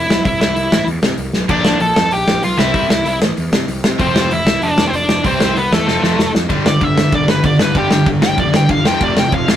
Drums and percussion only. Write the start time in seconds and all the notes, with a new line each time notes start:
0.10 snare
0.25 kick, open hi-hat
0.41 snare
0.56 open hi-hat
0.72 snare
0.88 open hi-hat
1.03 snare
1.17 open hi-hat
1.33 snare
1.49 kick, crash
1.65 snare
1.80 open hi-hat
1.96 snare
2.11 open hi-hat
2.28 snare
2.43 open hi-hat
2.59 snare
2.74 kick, open hi-hat
2.90 snare
3.06 open hi-hat
3.22 snare
3.37 open hi-hat
3.53 snare
3.68 open hi-hat
3.84 snare
4.00 kick, open hi-hat
4.16 snare
4.31 open hi-hat
4.47 snare
4.62 open hi-hat
4.78 snare
4.93 open hi-hat
5.09 snare
5.24 kick, open hi-hat
5.40 snare
5.56 open hi-hat
5.73 snare
5.88 snare
6.04 snare
6.19 snare
6.35 snare
6.50 kick, ride
6.66 snare
6.81 kick, ride
6.98 snare
7.12 kick, ride
7.28 snare
7.44 kick, ride
7.59 snare
7.75 kick, ride
7.91 snare
8.06 kick, ride
8.22 snare
8.38 kick, ride
8.54 snare
8.69 kick, ride
8.85 snare
9.01 kick, ride
9.17 snare
9.32 kick, ride
9.48 snare